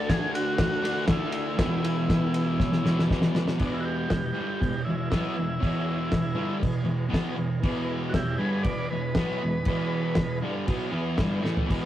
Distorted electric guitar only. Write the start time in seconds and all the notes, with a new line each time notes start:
Already playing: D3 A3 D4
0.82 A3 D4
0.87 D3
1.06 D3 A3
1.11 D4
1.56 E2 B2
1.61 E3
2.82 B2 E3
2.87 E2
3.08 E2 B2
3.13 E3
3.59 E2 B2 E3
4.09 E2 B2
4.34 G2 D3 G3
4.60 E2 B2
4.87 E2 B2
5.11 B2 F#3 B3
5.36 E2 B2
5.59 E2 B2 E3
6.12 E2 B2
6.35 G2 D3 G3
6.60 E2 B2
6.84 E2 B2
7.09 B2 F#3 B3
7.35 E2 B2
7.63 E2 B2 E3
8.13 E2 B2
8.39 G2 D3 G3
8.65 E2 B2
8.92 E2 B2
9.16 B2 F#3 B3
9.43 E2 B2
9.66 E2 B2 E3
10.18 E2 B2
10.42 G2 D3 G3
10.67 B2 F#3 B3
10.92 E3 B3 E4
11.17 G2 D3 G3
11.41 A2 E3 A3
11.66 E2 B2 E3